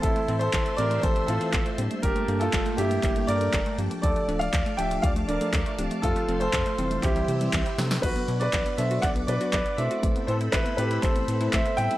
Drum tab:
CC |----------------|----------------|----------------|----------------|
HH |xxxxxxxxxxxxxxxx|xxxxxxxxxxxxxxxx|xxxxxxxxxxxxxxxx|xxxxxxxxxxxxxxxx|
CP |----x-------x---|----x---x---x---|----x-------x---|----x---x---x---|
SD |----------------|----------------|----------------|--------------oo|
BD |o---o---o---o---|o---o---o---o---|o---o---o---o---|o---o---o---o---|

CC |x---------------|----------------|
HH |xxxxxxxxxxxxxxxx|xxxxxxxxxxxxxxxx|
CP |----x---x---x---|----x---x---x---|
SD |----------------|----------------|
BD |o---o---o---o---|o---o---o---o---|